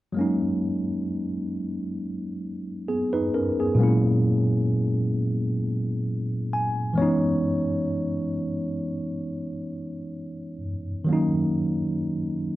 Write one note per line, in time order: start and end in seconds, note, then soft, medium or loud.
0.13 3.74 F#3 medium
0.13 3.75 G#3 medium
0.17 2.85 A#3 medium
0.17 2.86 C#4 medium
0.21 2.87 D#4 medium
2.88 3.13 B3 soft
2.88 3.13 G#4 medium
3.13 3.33 D#4 medium
3.13 3.33 B4 medium
3.34 3.59 C#4 medium
3.34 3.58 A#4 medium
3.60 4.03 B3 soft
3.60 4.03 G#4 medium
3.75 6.92 A#2 medium
3.75 6.92 F#3 medium
3.75 6.93 G#3 medium
3.80 6.94 A#3 medium
3.80 6.95 C#4 medium
3.80 6.96 E4 medium
6.53 6.95 G#5 medium
6.93 10.55 E3 medium
6.93 10.56 G#3 medium
6.98 10.57 B3 medium
6.98 10.59 C#4 medium
6.98 7.40 C#5 medium
7.02 10.60 D#4 medium
11.05 12.56 D#3 medium
11.05 12.56 F#3 medium
11.09 12.56 A#3 medium
11.09 12.56 C#4 medium
11.13 12.56 D#4 medium